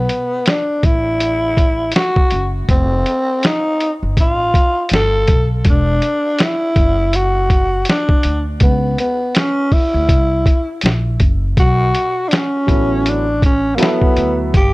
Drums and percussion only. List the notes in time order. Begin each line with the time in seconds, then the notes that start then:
0.09 closed hi-hat
0.46 snare, closed hi-hat
0.83 kick, closed hi-hat
1.20 closed hi-hat
1.57 kick, closed hi-hat
1.92 closed hi-hat
1.96 snare
2.16 kick
2.31 closed hi-hat
2.69 kick, closed hi-hat
3.06 closed hi-hat
3.43 snare, closed hi-hat
3.80 closed hi-hat
4.17 kick, closed hi-hat
4.54 kick, closed hi-hat
4.89 closed hi-hat
4.93 snare
5.28 kick, closed hi-hat
5.65 kick, closed hi-hat
6.02 closed hi-hat
6.39 snare, closed hi-hat
6.76 kick, closed hi-hat
7.13 closed hi-hat
7.50 kick, closed hi-hat
7.85 closed hi-hat
7.89 snare
8.09 kick
8.23 closed hi-hat
8.60 kick, closed hi-hat
8.98 closed hi-hat
9.35 snare, closed hi-hat
9.72 kick, open hi-hat
10.09 kick, closed hi-hat
10.46 kick, closed hi-hat
10.81 closed hi-hat
10.86 snare
11.20 kick, closed hi-hat
11.57 kick, closed hi-hat
11.95 closed hi-hat
12.31 snare, closed hi-hat
12.68 kick, closed hi-hat
13.06 closed hi-hat
13.42 kick, closed hi-hat
13.78 closed hi-hat
13.83 snare
14.02 kick
14.17 closed hi-hat
14.54 kick, closed hi-hat